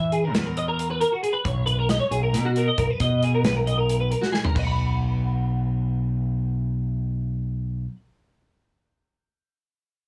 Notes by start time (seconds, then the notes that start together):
Already playing: E3 E5
0.12 G#4, closed hi-hat
0.24 A#4
0.34 E2 B4, snare, closed hi-hat
0.46 A#4
0.57 D#5, closed hi-hat
0.68 A#4
0.79 closed hi-hat
0.90 B4
1.01 A#4, closed hi-hat
1.12 F#4
1.23 G#4, closed hi-hat
1.33 B4
1.45 B1 C#5, kick, closed hi-hat
1.66 B4, closed hi-hat
1.79 A#4
1.89 D#5, snare, closed hi-hat
2.00 C#5
2.11 B1 G#4, closed hi-hat
2.23 A#4
2.33 B2, snare, closed hi-hat
2.45 F#4
2.56 A#4, closed hi-hat
2.68 D#5
2.78 B1 A#4, kick, closed hi-hat
2.90 B4
3.00 B2 D#5, kick, closed hi-hat
3.23 G#4, closed hi-hat
3.34 A#4
3.43 B1 B4, snare, closed hi-hat
3.56 A#4
3.67 D#5, closed hi-hat
3.78 A#4
3.89 closed hi-hat
4.00 B4
4.11 A#4, closed hi-hat
4.21 F#4, snare
4.32 G#4, snare
4.44 A#4, floor tom
4.55 B1 B4 D#5, kick, crash
4.63 F#5 B5